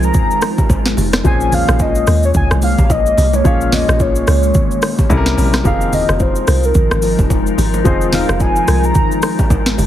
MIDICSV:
0, 0, Header, 1, 6, 480
1, 0, Start_track
1, 0, Key_signature, -4, "minor"
1, 0, Tempo, 550459
1, 1088, Time_signature, 4, 2, 24, 8
1, 8603, End_track
2, 0, Start_track
2, 0, Title_t, "Soft synth lead"
2, 0, Program_c, 0, 80
2, 37, Note_on_c, 0, 82, 106
2, 513, Note_off_c, 0, 82, 0
2, 1104, Note_on_c, 0, 80, 114
2, 1343, Note_on_c, 0, 77, 104
2, 1356, Note_off_c, 0, 80, 0
2, 1584, Note_on_c, 0, 75, 99
2, 1597, Note_off_c, 0, 77, 0
2, 1955, Note_off_c, 0, 75, 0
2, 1962, Note_on_c, 0, 73, 90
2, 2004, Note_off_c, 0, 73, 0
2, 2062, Note_on_c, 0, 80, 107
2, 2167, Note_off_c, 0, 80, 0
2, 2300, Note_on_c, 0, 77, 100
2, 2540, Note_on_c, 0, 75, 99
2, 2554, Note_off_c, 0, 77, 0
2, 2920, Note_on_c, 0, 73, 88
2, 2933, Note_off_c, 0, 75, 0
2, 3021, Note_on_c, 0, 77, 100
2, 3034, Note_off_c, 0, 73, 0
2, 3261, Note_on_c, 0, 75, 93
2, 3274, Note_off_c, 0, 77, 0
2, 3501, Note_on_c, 0, 73, 83
2, 3514, Note_off_c, 0, 75, 0
2, 4695, Note_off_c, 0, 73, 0
2, 4939, Note_on_c, 0, 77, 111
2, 5179, Note_on_c, 0, 75, 100
2, 5192, Note_off_c, 0, 77, 0
2, 5419, Note_on_c, 0, 72, 98
2, 5432, Note_off_c, 0, 75, 0
2, 5799, Note_on_c, 0, 70, 85
2, 5813, Note_off_c, 0, 72, 0
2, 6274, Note_off_c, 0, 70, 0
2, 6859, Note_on_c, 0, 75, 91
2, 7077, Note_off_c, 0, 75, 0
2, 7097, Note_on_c, 0, 77, 91
2, 7317, Note_off_c, 0, 77, 0
2, 7336, Note_on_c, 0, 80, 99
2, 7717, Note_on_c, 0, 82, 105
2, 7730, Note_off_c, 0, 80, 0
2, 8192, Note_off_c, 0, 82, 0
2, 8603, End_track
3, 0, Start_track
3, 0, Title_t, "Grand piano"
3, 0, Program_c, 1, 0
3, 0, Control_c, 1, 64, 127
3, 0, Note_on_c, 1, 53, 70
3, 0, Note_on_c, 1, 60, 63
3, 0, Note_on_c, 1, 63, 65
3, 0, Note_on_c, 1, 65, 64
3, 0, Note_on_c, 1, 68, 62
3, 0, Note_on_c, 1, 72, 76
3, 1050, Note_off_c, 1, 53, 0
3, 1052, Note_off_c, 1, 60, 0
3, 1054, Note_off_c, 1, 63, 0
3, 1056, Note_off_c, 1, 65, 0
3, 1057, Note_off_c, 1, 68, 0
3, 1059, Note_off_c, 1, 72, 0
3, 1081, Note_on_c, 1, 46, 71
3, 1085, Note_on_c, 1, 53, 67
3, 1089, Note_on_c, 1, 60, 53
3, 1094, Note_on_c, 1, 68, 65
3, 1099, Control_c, 1, 64, 0
3, 1099, Note_on_c, 1, 72, 76
3, 1147, Note_on_c, 1, 61, 67
3, 1155, Note_off_c, 1, 60, 0
3, 1272, Control_c, 1, 64, 127
3, 2970, Note_off_c, 1, 46, 0
3, 2972, Note_off_c, 1, 53, 0
3, 2976, Note_off_c, 1, 68, 0
3, 2979, Note_off_c, 1, 72, 0
3, 2996, Note_off_c, 1, 61, 0
3, 3000, Note_on_c, 1, 46, 70
3, 3004, Note_on_c, 1, 53, 63
3, 3009, Note_on_c, 1, 61, 65
3, 3014, Note_on_c, 1, 68, 64
3, 3018, Note_on_c, 1, 73, 77
3, 4415, Note_off_c, 1, 46, 0
3, 4417, Note_off_c, 1, 53, 0
3, 4420, Note_off_c, 1, 61, 0
3, 4422, Note_off_c, 1, 68, 0
3, 4425, Note_off_c, 1, 73, 0
3, 4444, Note_on_c, 1, 48, 83
3, 4446, Note_on_c, 1, 55, 76
3, 4448, Note_on_c, 1, 61, 79
3, 4451, Note_on_c, 1, 64, 79
3, 4453, Note_on_c, 1, 69, 74
3, 4459, Control_c, 1, 64, 0
3, 4510, Note_on_c, 1, 70, 94
3, 4516, Note_off_c, 1, 69, 0
3, 4615, Control_c, 1, 64, 127
3, 4920, Note_on_c, 1, 53, 73
3, 4923, Note_on_c, 1, 60, 65
3, 4924, Note_off_c, 1, 70, 0
3, 4926, Note_off_c, 1, 48, 0
3, 4927, Note_off_c, 1, 55, 0
3, 4927, Note_on_c, 1, 63, 63
3, 4928, Note_off_c, 1, 61, 0
3, 4930, Note_off_c, 1, 64, 0
3, 4930, Note_on_c, 1, 67, 63
3, 4934, Note_on_c, 1, 68, 65
3, 4937, Note_on_c, 1, 70, 75
3, 4939, Control_c, 1, 64, 0
3, 5095, Control_c, 1, 64, 127
3, 6809, Note_off_c, 1, 53, 0
3, 6811, Note_off_c, 1, 60, 0
3, 6813, Note_off_c, 1, 63, 0
3, 6815, Note_off_c, 1, 67, 0
3, 6816, Note_off_c, 1, 68, 0
3, 6818, Note_off_c, 1, 70, 0
3, 6840, Note_on_c, 1, 53, 68
3, 6844, Note_on_c, 1, 60, 64
3, 6848, Note_on_c, 1, 63, 64
3, 6852, Note_on_c, 1, 65, 65
3, 6856, Note_on_c, 1, 68, 64
3, 6859, Note_on_c, 1, 72, 78
3, 8603, Note_off_c, 1, 53, 0
3, 8603, Note_off_c, 1, 60, 0
3, 8603, Note_off_c, 1, 63, 0
3, 8603, Note_off_c, 1, 65, 0
3, 8603, Note_off_c, 1, 68, 0
3, 8603, Note_off_c, 1, 72, 0
3, 8603, End_track
4, 0, Start_track
4, 0, Title_t, "Ambient pad"
4, 0, Program_c, 2, 92
4, 0, Note_on_c, 2, 53, 83
4, 0, Note_on_c, 2, 56, 77
4, 0, Note_on_c, 2, 63, 76
4, 0, Note_on_c, 2, 65, 77
4, 0, Note_on_c, 2, 70, 89
4, 1053, Note_off_c, 2, 53, 0
4, 1053, Note_off_c, 2, 56, 0
4, 1053, Note_off_c, 2, 63, 0
4, 1053, Note_off_c, 2, 65, 0
4, 1053, Note_off_c, 2, 70, 0
4, 1089, Note_on_c, 2, 56, 82
4, 1089, Note_on_c, 2, 58, 75
4, 4415, Note_off_c, 2, 56, 0
4, 4894, Note_off_c, 2, 58, 0
4, 4927, Note_on_c, 2, 63, 77
4, 4928, Note_on_c, 2, 53, 80
4, 4928, Note_on_c, 2, 56, 80
4, 4928, Note_on_c, 2, 65, 75
4, 4928, Note_on_c, 2, 70, 92
4, 8603, Note_off_c, 2, 53, 0
4, 8603, Note_off_c, 2, 56, 0
4, 8603, Note_off_c, 2, 63, 0
4, 8603, Note_off_c, 2, 65, 0
4, 8603, Note_off_c, 2, 70, 0
4, 8603, End_track
5, 0, Start_track
5, 0, Title_t, "Log drum bass"
5, 0, Program_c, 3, 39
5, 0, Note_on_c, 3, 36, 98
5, 101, Note_off_c, 3, 36, 0
5, 608, Note_on_c, 3, 32, 97
5, 820, Note_off_c, 3, 32, 0
5, 848, Note_on_c, 3, 29, 93
5, 1060, Note_off_c, 3, 29, 0
5, 1088, Note_on_c, 3, 34, 114
5, 1423, Note_off_c, 3, 34, 0
5, 1469, Note_on_c, 3, 34, 98
5, 1769, Note_off_c, 3, 34, 0
5, 1809, Note_on_c, 3, 39, 101
5, 2021, Note_off_c, 3, 39, 0
5, 2047, Note_on_c, 3, 37, 98
5, 2170, Note_off_c, 3, 37, 0
5, 2188, Note_on_c, 3, 36, 91
5, 2400, Note_off_c, 3, 36, 0
5, 2428, Note_on_c, 3, 34, 98
5, 2729, Note_off_c, 3, 34, 0
5, 2769, Note_on_c, 3, 36, 98
5, 2981, Note_off_c, 3, 36, 0
5, 3009, Note_on_c, 3, 34, 107
5, 3343, Note_off_c, 3, 34, 0
5, 3388, Note_on_c, 3, 34, 96
5, 3689, Note_off_c, 3, 34, 0
5, 3729, Note_on_c, 3, 37, 97
5, 3941, Note_off_c, 3, 37, 0
5, 4448, Note_on_c, 3, 36, 106
5, 4660, Note_off_c, 3, 36, 0
5, 4689, Note_on_c, 3, 34, 93
5, 4901, Note_off_c, 3, 34, 0
5, 4928, Note_on_c, 3, 29, 109
5, 5263, Note_off_c, 3, 29, 0
5, 5309, Note_on_c, 3, 29, 89
5, 5609, Note_off_c, 3, 29, 0
5, 5649, Note_on_c, 3, 36, 105
5, 5860, Note_off_c, 3, 36, 0
5, 5887, Note_on_c, 3, 34, 99
5, 6011, Note_off_c, 3, 34, 0
5, 6030, Note_on_c, 3, 32, 87
5, 6241, Note_off_c, 3, 32, 0
5, 6268, Note_on_c, 3, 29, 90
5, 6569, Note_off_c, 3, 29, 0
5, 6609, Note_on_c, 3, 32, 91
5, 6821, Note_off_c, 3, 32, 0
5, 6849, Note_on_c, 3, 29, 118
5, 7184, Note_off_c, 3, 29, 0
5, 7228, Note_on_c, 3, 29, 99
5, 7529, Note_off_c, 3, 29, 0
5, 7568, Note_on_c, 3, 36, 93
5, 7780, Note_off_c, 3, 36, 0
5, 8287, Note_on_c, 3, 32, 102
5, 8500, Note_off_c, 3, 32, 0
5, 8529, Note_on_c, 3, 29, 95
5, 8603, Note_off_c, 3, 29, 0
5, 8603, End_track
6, 0, Start_track
6, 0, Title_t, "Drums"
6, 25, Note_on_c, 9, 82, 57
6, 112, Note_off_c, 9, 82, 0
6, 122, Note_on_c, 9, 82, 84
6, 127, Note_on_c, 9, 36, 126
6, 130, Note_on_c, 9, 64, 71
6, 210, Note_off_c, 9, 82, 0
6, 214, Note_off_c, 9, 36, 0
6, 217, Note_off_c, 9, 64, 0
6, 269, Note_on_c, 9, 82, 47
6, 357, Note_off_c, 9, 82, 0
6, 363, Note_on_c, 9, 46, 53
6, 363, Note_on_c, 9, 82, 94
6, 369, Note_on_c, 9, 37, 96
6, 371, Note_on_c, 9, 60, 52
6, 451, Note_off_c, 9, 46, 0
6, 451, Note_off_c, 9, 82, 0
6, 456, Note_off_c, 9, 37, 0
6, 458, Note_off_c, 9, 60, 0
6, 507, Note_on_c, 9, 82, 56
6, 508, Note_on_c, 9, 36, 91
6, 509, Note_on_c, 9, 61, 77
6, 594, Note_off_c, 9, 82, 0
6, 595, Note_off_c, 9, 36, 0
6, 596, Note_off_c, 9, 61, 0
6, 605, Note_on_c, 9, 60, 73
6, 608, Note_on_c, 9, 36, 101
6, 610, Note_on_c, 9, 82, 76
6, 692, Note_off_c, 9, 60, 0
6, 695, Note_off_c, 9, 36, 0
6, 697, Note_off_c, 9, 82, 0
6, 746, Note_on_c, 9, 38, 67
6, 751, Note_on_c, 9, 82, 51
6, 833, Note_off_c, 9, 38, 0
6, 838, Note_off_c, 9, 82, 0
6, 847, Note_on_c, 9, 61, 74
6, 854, Note_on_c, 9, 46, 49
6, 854, Note_on_c, 9, 82, 86
6, 934, Note_off_c, 9, 61, 0
6, 941, Note_off_c, 9, 46, 0
6, 941, Note_off_c, 9, 82, 0
6, 986, Note_on_c, 9, 82, 58
6, 987, Note_on_c, 9, 60, 63
6, 989, Note_on_c, 9, 37, 104
6, 989, Note_on_c, 9, 38, 73
6, 1074, Note_off_c, 9, 60, 0
6, 1074, Note_off_c, 9, 82, 0
6, 1076, Note_off_c, 9, 37, 0
6, 1076, Note_off_c, 9, 38, 0
6, 1088, Note_on_c, 9, 36, 120
6, 1088, Note_on_c, 9, 64, 77
6, 1088, Note_on_c, 9, 82, 74
6, 1175, Note_off_c, 9, 64, 0
6, 1175, Note_off_c, 9, 82, 0
6, 1176, Note_off_c, 9, 36, 0
6, 1227, Note_on_c, 9, 82, 60
6, 1314, Note_off_c, 9, 82, 0
6, 1327, Note_on_c, 9, 64, 88
6, 1329, Note_on_c, 9, 46, 51
6, 1329, Note_on_c, 9, 82, 85
6, 1415, Note_off_c, 9, 64, 0
6, 1416, Note_off_c, 9, 46, 0
6, 1416, Note_off_c, 9, 82, 0
6, 1466, Note_on_c, 9, 61, 75
6, 1470, Note_on_c, 9, 37, 105
6, 1470, Note_on_c, 9, 82, 55
6, 1553, Note_off_c, 9, 61, 0
6, 1557, Note_off_c, 9, 37, 0
6, 1558, Note_off_c, 9, 82, 0
6, 1564, Note_on_c, 9, 82, 68
6, 1566, Note_on_c, 9, 60, 73
6, 1567, Note_on_c, 9, 36, 102
6, 1651, Note_off_c, 9, 82, 0
6, 1654, Note_off_c, 9, 36, 0
6, 1654, Note_off_c, 9, 60, 0
6, 1703, Note_on_c, 9, 82, 62
6, 1790, Note_off_c, 9, 82, 0
6, 1806, Note_on_c, 9, 46, 60
6, 1806, Note_on_c, 9, 82, 98
6, 1809, Note_on_c, 9, 37, 92
6, 1894, Note_off_c, 9, 46, 0
6, 1894, Note_off_c, 9, 82, 0
6, 1896, Note_off_c, 9, 37, 0
6, 1945, Note_on_c, 9, 82, 58
6, 2032, Note_off_c, 9, 82, 0
6, 2043, Note_on_c, 9, 82, 80
6, 2047, Note_on_c, 9, 36, 127
6, 2049, Note_on_c, 9, 64, 69
6, 2130, Note_off_c, 9, 82, 0
6, 2134, Note_off_c, 9, 36, 0
6, 2136, Note_off_c, 9, 64, 0
6, 2189, Note_on_c, 9, 37, 96
6, 2190, Note_on_c, 9, 82, 46
6, 2276, Note_off_c, 9, 37, 0
6, 2277, Note_off_c, 9, 82, 0
6, 2284, Note_on_c, 9, 46, 53
6, 2284, Note_on_c, 9, 82, 91
6, 2291, Note_on_c, 9, 60, 50
6, 2371, Note_off_c, 9, 46, 0
6, 2371, Note_off_c, 9, 82, 0
6, 2379, Note_off_c, 9, 60, 0
6, 2428, Note_on_c, 9, 36, 96
6, 2428, Note_on_c, 9, 82, 55
6, 2429, Note_on_c, 9, 61, 80
6, 2515, Note_off_c, 9, 82, 0
6, 2516, Note_off_c, 9, 36, 0
6, 2517, Note_off_c, 9, 61, 0
6, 2527, Note_on_c, 9, 60, 75
6, 2528, Note_on_c, 9, 36, 100
6, 2530, Note_on_c, 9, 82, 77
6, 2615, Note_off_c, 9, 36, 0
6, 2615, Note_off_c, 9, 60, 0
6, 2617, Note_off_c, 9, 82, 0
6, 2671, Note_on_c, 9, 82, 52
6, 2758, Note_off_c, 9, 82, 0
6, 2768, Note_on_c, 9, 61, 76
6, 2775, Note_on_c, 9, 46, 49
6, 2775, Note_on_c, 9, 82, 85
6, 2855, Note_off_c, 9, 61, 0
6, 2862, Note_off_c, 9, 46, 0
6, 2862, Note_off_c, 9, 82, 0
6, 2907, Note_on_c, 9, 60, 64
6, 2908, Note_on_c, 9, 82, 60
6, 2995, Note_off_c, 9, 60, 0
6, 2995, Note_off_c, 9, 82, 0
6, 3009, Note_on_c, 9, 36, 112
6, 3009, Note_on_c, 9, 64, 74
6, 3010, Note_on_c, 9, 82, 75
6, 3096, Note_off_c, 9, 36, 0
6, 3096, Note_off_c, 9, 64, 0
6, 3097, Note_off_c, 9, 82, 0
6, 3149, Note_on_c, 9, 82, 59
6, 3236, Note_off_c, 9, 82, 0
6, 3247, Note_on_c, 9, 38, 73
6, 3248, Note_on_c, 9, 64, 85
6, 3251, Note_on_c, 9, 46, 52
6, 3251, Note_on_c, 9, 82, 85
6, 3335, Note_off_c, 9, 38, 0
6, 3335, Note_off_c, 9, 64, 0
6, 3338, Note_off_c, 9, 46, 0
6, 3338, Note_off_c, 9, 82, 0
6, 3386, Note_on_c, 9, 61, 77
6, 3392, Note_on_c, 9, 37, 105
6, 3393, Note_on_c, 9, 82, 57
6, 3473, Note_off_c, 9, 61, 0
6, 3479, Note_off_c, 9, 37, 0
6, 3480, Note_off_c, 9, 82, 0
6, 3485, Note_on_c, 9, 82, 67
6, 3487, Note_on_c, 9, 60, 71
6, 3488, Note_on_c, 9, 36, 107
6, 3573, Note_off_c, 9, 82, 0
6, 3574, Note_off_c, 9, 60, 0
6, 3575, Note_off_c, 9, 36, 0
6, 3625, Note_on_c, 9, 82, 64
6, 3712, Note_off_c, 9, 82, 0
6, 3727, Note_on_c, 9, 46, 58
6, 3727, Note_on_c, 9, 82, 97
6, 3729, Note_on_c, 9, 37, 92
6, 3814, Note_off_c, 9, 46, 0
6, 3814, Note_off_c, 9, 82, 0
6, 3817, Note_off_c, 9, 37, 0
6, 3864, Note_on_c, 9, 82, 59
6, 3952, Note_off_c, 9, 82, 0
6, 3962, Note_on_c, 9, 82, 78
6, 3967, Note_on_c, 9, 36, 123
6, 3971, Note_on_c, 9, 64, 71
6, 4049, Note_off_c, 9, 82, 0
6, 4054, Note_off_c, 9, 36, 0
6, 4058, Note_off_c, 9, 64, 0
6, 4109, Note_on_c, 9, 82, 46
6, 4196, Note_off_c, 9, 82, 0
6, 4204, Note_on_c, 9, 46, 54
6, 4204, Note_on_c, 9, 82, 93
6, 4209, Note_on_c, 9, 37, 104
6, 4211, Note_on_c, 9, 60, 53
6, 4291, Note_off_c, 9, 46, 0
6, 4291, Note_off_c, 9, 82, 0
6, 4296, Note_off_c, 9, 37, 0
6, 4298, Note_off_c, 9, 60, 0
6, 4347, Note_on_c, 9, 82, 55
6, 4348, Note_on_c, 9, 36, 99
6, 4349, Note_on_c, 9, 61, 82
6, 4434, Note_off_c, 9, 82, 0
6, 4435, Note_off_c, 9, 36, 0
6, 4436, Note_off_c, 9, 61, 0
6, 4446, Note_on_c, 9, 60, 75
6, 4448, Note_on_c, 9, 36, 101
6, 4451, Note_on_c, 9, 82, 74
6, 4533, Note_off_c, 9, 60, 0
6, 4535, Note_off_c, 9, 36, 0
6, 4538, Note_off_c, 9, 82, 0
6, 4587, Note_on_c, 9, 38, 69
6, 4591, Note_on_c, 9, 82, 52
6, 4674, Note_off_c, 9, 38, 0
6, 4679, Note_off_c, 9, 82, 0
6, 4688, Note_on_c, 9, 61, 77
6, 4694, Note_on_c, 9, 46, 48
6, 4694, Note_on_c, 9, 82, 85
6, 4776, Note_off_c, 9, 61, 0
6, 4782, Note_off_c, 9, 46, 0
6, 4782, Note_off_c, 9, 82, 0
6, 4827, Note_on_c, 9, 82, 61
6, 4828, Note_on_c, 9, 60, 64
6, 4829, Note_on_c, 9, 37, 103
6, 4829, Note_on_c, 9, 38, 75
6, 4914, Note_off_c, 9, 82, 0
6, 4915, Note_off_c, 9, 60, 0
6, 4916, Note_off_c, 9, 37, 0
6, 4916, Note_off_c, 9, 38, 0
6, 4928, Note_on_c, 9, 82, 74
6, 4929, Note_on_c, 9, 36, 118
6, 4929, Note_on_c, 9, 64, 74
6, 5015, Note_off_c, 9, 82, 0
6, 5016, Note_off_c, 9, 36, 0
6, 5016, Note_off_c, 9, 64, 0
6, 5067, Note_on_c, 9, 82, 59
6, 5154, Note_off_c, 9, 82, 0
6, 5169, Note_on_c, 9, 46, 51
6, 5169, Note_on_c, 9, 64, 88
6, 5169, Note_on_c, 9, 82, 85
6, 5257, Note_off_c, 9, 46, 0
6, 5257, Note_off_c, 9, 64, 0
6, 5257, Note_off_c, 9, 82, 0
6, 5308, Note_on_c, 9, 61, 77
6, 5310, Note_on_c, 9, 37, 102
6, 5310, Note_on_c, 9, 82, 57
6, 5395, Note_off_c, 9, 61, 0
6, 5397, Note_off_c, 9, 37, 0
6, 5398, Note_off_c, 9, 82, 0
6, 5403, Note_on_c, 9, 82, 66
6, 5407, Note_on_c, 9, 36, 100
6, 5408, Note_on_c, 9, 60, 76
6, 5490, Note_off_c, 9, 82, 0
6, 5494, Note_off_c, 9, 36, 0
6, 5495, Note_off_c, 9, 60, 0
6, 5543, Note_on_c, 9, 82, 61
6, 5630, Note_off_c, 9, 82, 0
6, 5646, Note_on_c, 9, 46, 59
6, 5646, Note_on_c, 9, 82, 94
6, 5648, Note_on_c, 9, 37, 91
6, 5733, Note_off_c, 9, 46, 0
6, 5733, Note_off_c, 9, 82, 0
6, 5736, Note_off_c, 9, 37, 0
6, 5784, Note_on_c, 9, 82, 58
6, 5872, Note_off_c, 9, 82, 0
6, 5882, Note_on_c, 9, 82, 82
6, 5887, Note_on_c, 9, 36, 120
6, 5889, Note_on_c, 9, 64, 70
6, 5969, Note_off_c, 9, 82, 0
6, 5974, Note_off_c, 9, 36, 0
6, 5977, Note_off_c, 9, 64, 0
6, 6028, Note_on_c, 9, 37, 100
6, 6029, Note_on_c, 9, 82, 48
6, 6116, Note_off_c, 9, 37, 0
6, 6116, Note_off_c, 9, 82, 0
6, 6123, Note_on_c, 9, 46, 54
6, 6123, Note_on_c, 9, 82, 93
6, 6131, Note_on_c, 9, 60, 53
6, 6211, Note_off_c, 9, 46, 0
6, 6211, Note_off_c, 9, 82, 0
6, 6218, Note_off_c, 9, 60, 0
6, 6267, Note_on_c, 9, 82, 54
6, 6268, Note_on_c, 9, 36, 93
6, 6269, Note_on_c, 9, 61, 80
6, 6354, Note_off_c, 9, 82, 0
6, 6355, Note_off_c, 9, 36, 0
6, 6356, Note_off_c, 9, 61, 0
6, 6367, Note_on_c, 9, 60, 74
6, 6368, Note_on_c, 9, 36, 102
6, 6370, Note_on_c, 9, 82, 79
6, 6454, Note_off_c, 9, 60, 0
6, 6455, Note_off_c, 9, 36, 0
6, 6457, Note_off_c, 9, 82, 0
6, 6511, Note_on_c, 9, 82, 53
6, 6598, Note_off_c, 9, 82, 0
6, 6610, Note_on_c, 9, 61, 74
6, 6614, Note_on_c, 9, 46, 50
6, 6614, Note_on_c, 9, 82, 84
6, 6697, Note_off_c, 9, 61, 0
6, 6702, Note_off_c, 9, 46, 0
6, 6702, Note_off_c, 9, 82, 0
6, 6747, Note_on_c, 9, 82, 60
6, 6748, Note_on_c, 9, 60, 64
6, 6834, Note_off_c, 9, 82, 0
6, 6835, Note_off_c, 9, 60, 0
6, 6849, Note_on_c, 9, 36, 116
6, 6849, Note_on_c, 9, 64, 77
6, 6849, Note_on_c, 9, 82, 72
6, 6936, Note_off_c, 9, 36, 0
6, 6936, Note_off_c, 9, 64, 0
6, 6936, Note_off_c, 9, 82, 0
6, 6988, Note_on_c, 9, 82, 59
6, 7075, Note_off_c, 9, 82, 0
6, 7086, Note_on_c, 9, 38, 70
6, 7089, Note_on_c, 9, 46, 50
6, 7089, Note_on_c, 9, 64, 85
6, 7089, Note_on_c, 9, 82, 87
6, 7173, Note_off_c, 9, 38, 0
6, 7176, Note_off_c, 9, 46, 0
6, 7176, Note_off_c, 9, 64, 0
6, 7176, Note_off_c, 9, 82, 0
6, 7228, Note_on_c, 9, 61, 78
6, 7231, Note_on_c, 9, 37, 104
6, 7231, Note_on_c, 9, 82, 57
6, 7315, Note_off_c, 9, 61, 0
6, 7318, Note_off_c, 9, 37, 0
6, 7318, Note_off_c, 9, 82, 0
6, 7324, Note_on_c, 9, 82, 67
6, 7327, Note_on_c, 9, 36, 100
6, 7328, Note_on_c, 9, 60, 78
6, 7412, Note_off_c, 9, 82, 0
6, 7414, Note_off_c, 9, 36, 0
6, 7415, Note_off_c, 9, 60, 0
6, 7464, Note_on_c, 9, 82, 63
6, 7551, Note_off_c, 9, 82, 0
6, 7567, Note_on_c, 9, 46, 57
6, 7567, Note_on_c, 9, 82, 97
6, 7570, Note_on_c, 9, 37, 92
6, 7654, Note_off_c, 9, 46, 0
6, 7654, Note_off_c, 9, 82, 0
6, 7657, Note_off_c, 9, 37, 0
6, 7705, Note_on_c, 9, 82, 57
6, 7792, Note_off_c, 9, 82, 0
6, 7803, Note_on_c, 9, 82, 81
6, 7807, Note_on_c, 9, 36, 127
6, 7811, Note_on_c, 9, 64, 69
6, 7890, Note_off_c, 9, 82, 0
6, 7894, Note_off_c, 9, 36, 0
6, 7898, Note_off_c, 9, 64, 0
6, 7949, Note_on_c, 9, 82, 49
6, 8037, Note_off_c, 9, 82, 0
6, 8043, Note_on_c, 9, 46, 55
6, 8043, Note_on_c, 9, 82, 96
6, 8048, Note_on_c, 9, 37, 99
6, 8052, Note_on_c, 9, 60, 52
6, 8130, Note_off_c, 9, 46, 0
6, 8130, Note_off_c, 9, 82, 0
6, 8135, Note_off_c, 9, 37, 0
6, 8139, Note_off_c, 9, 60, 0
6, 8187, Note_on_c, 9, 82, 56
6, 8188, Note_on_c, 9, 36, 95
6, 8190, Note_on_c, 9, 61, 82
6, 8274, Note_off_c, 9, 82, 0
6, 8275, Note_off_c, 9, 36, 0
6, 8277, Note_off_c, 9, 61, 0
6, 8287, Note_on_c, 9, 36, 100
6, 8287, Note_on_c, 9, 60, 78
6, 8289, Note_on_c, 9, 82, 78
6, 8374, Note_off_c, 9, 36, 0
6, 8375, Note_off_c, 9, 60, 0
6, 8376, Note_off_c, 9, 82, 0
6, 8425, Note_on_c, 9, 38, 68
6, 8429, Note_on_c, 9, 82, 53
6, 8512, Note_off_c, 9, 38, 0
6, 8516, Note_off_c, 9, 82, 0
6, 8529, Note_on_c, 9, 61, 78
6, 8534, Note_on_c, 9, 46, 52
6, 8534, Note_on_c, 9, 82, 85
6, 8603, Note_off_c, 9, 46, 0
6, 8603, Note_off_c, 9, 61, 0
6, 8603, Note_off_c, 9, 82, 0
6, 8603, End_track
0, 0, End_of_file